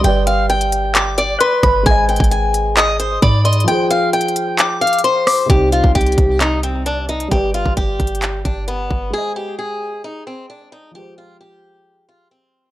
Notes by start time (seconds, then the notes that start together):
0.01 G1 G3 G4 G5, closed hi-hat
0.06 B4 D5
0.27 F5, closed hi-hat
0.50 G5, closed hi-hat
0.61 closed hi-hat
0.72 closed hi-hat
0.95 D6, clap, closed hi-hat
1.18 D5, closed hi-hat
1.41 B4 C6, closed hi-hat
1.63 G1 B5, kick, cross-stick, closed hi-hat
1.83 G#1 G#3 G#4 G#5, kick, closed hi-hat
1.88 C5 D#5
2.09 G5, closed hi-hat
2.16 G#1, kick, closed hi-hat
2.24 closed hi-hat
2.31 G#5, closed hi-hat
2.54 closed hi-hat
2.77 D#5 D#6, clap, closed hi-hat
3.00 C5, closed hi-hat
3.22 G#2 D5 B5, kick, closed hi-hat
3.45 D#5 C6, closed hi-hat
3.53 closed hi-hat
3.60 F3, closed hi-hat
3.66 F4 G#4 G5, closed hi-hat
3.72 C5
3.91 F5, closed hi-hat
4.13 G5, closed hi-hat
4.21 closed hi-hat
4.28 closed hi-hat
4.36 closed hi-hat
4.59 D6, clap, closed hi-hat
4.81 F5, closed hi-hat
4.87 closed hi-hat
4.93 closed hi-hat
4.99 closed hi-hat
5.04 C5 C6, closed hi-hat
5.27 D6, cross-stick, open hi-hat
5.46 C2 C3 G3 G4, kick, closed hi-hat
5.51 D#4 C5
5.72 F4, closed hi-hat
5.84 C2, kick
5.95 G4, kick, closed hi-hat
6.01 closed hi-hat
6.07 closed hi-hat
6.12 closed hi-hat
6.18 C2, kick, closed hi-hat
6.41 D#4, clap, closed hi-hat
6.63 C4, closed hi-hat
6.86 D4, closed hi-hat
7.09 D#4, closed hi-hat
7.20 closed hi-hat
7.28 G1 G3 G4, kick, closed hi-hat
7.33 B4 D5
7.54 F4, closed hi-hat
7.66 G1, kick
7.77 G4, kick, closed hi-hat
8.00 G1, kick, closed hi-hat
8.07 closed hi-hat
8.15 closed hi-hat
8.22 clap, closed hi-hat
8.45 G1 D4, kick, closed hi-hat
8.68 B3, closed hi-hat
8.91 G1, kick
9.10 G#3 G#4
9.15 C5 D#5
9.36 G4
9.59 G#4
10.04 D#4
10.27 C4
10.50 D4
10.72 D#4
10.91 F3 F4 G4
10.96 G#3 C5
11.18 F4
11.41 G4
12.09 F4
12.31 C4